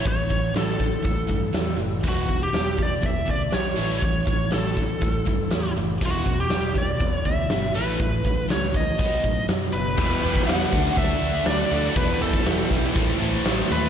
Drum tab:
CC |----------------|----------------|----------------|----------------|
HH |o-o-o-o-o-o-o-o-|o-o-o-o-o-o-o-o-|o-o-o-o-o-o-o-o-|o-o-o-o-o-o-o-o-|
SD |----o-------o---|----o-------o---|----o-------o---|----o-------o---|
BD |o-o---o-o-o-----|o-o---o-o-o-----|o-o---o-o-o-----|o-o---o-o-o-----|

CC |----------------|x---------------|----------------|
HH |o-o-o-o-o-o-o-o-|--o-o-o-o-o-o-o-|o-o-o-o-o-o-o-o-|
SD |----o-------o---|----o--o----o---|----o--o----o---|
BD |o-o---o-o-o-----|o--o--o-o-------|o--o--o-o-------|